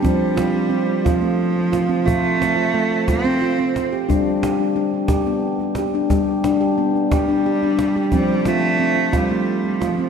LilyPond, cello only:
\new Staff \with { instrumentName = "Cello" } { \clef bass \time 6/8 \key f \lydian \tempo 4. = 59 g4. f4. | a4. c'4 r8 | r2. | r4. g4. |
g8 a4 g4 f8 | }